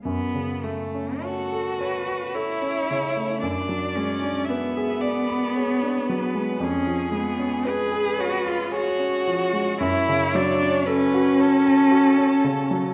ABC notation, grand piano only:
X:1
M:3/4
L:1/16
Q:1/4=56
K:F#m
V:1 name="Grand piano"
F,, C, A, C c A c c' A C C, A, | F,, F, G, D B G d b G D F, G, | ^E,, ^E, G, C B G c b G C E, G, | F,, C, F, C A F c a F C C, F, |]